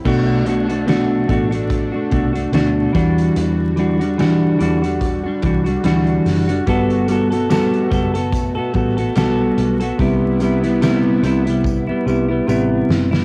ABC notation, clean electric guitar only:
X:1
M:4/4
L:1/16
Q:"Swing 16ths" 1/4=72
K:Bphr
V:1 name="Clean electric guitar"
[B,,A,DF]2 [B,,A,DF] [A,DF] [B,,A,DF]2 [B,,A,DF] [A,DF]2 [A,DF] [B,,A,DF] [A,DF] [B,,A,DF]2 [E,G,DF]2- | [E,G,DF]2 [E,G,DF] [G,DF] [E,G,DF]2 [E,G,DF] [G,DF]2 [G,DF] [E,G,DF] [G,DF] [E,G,DF]3 [G,DF] | [G,B,FA]2 [G,B,FA] [B,FA] [G,B,FA]2 [G,B,FA] [B,FA]2 [B,FA] [G,B,FA] [B,FA] [G,B,FA]3 [B,FA] | [C,G,B,E]2 [C,G,B,E] [G,B,E] [C,G,B,E]2 [C,G,B,E] [G,B,E]2 [G,B,E] [C,G,B,E] [G,B,E] [C,G,B,E]3 [G,B,E] |]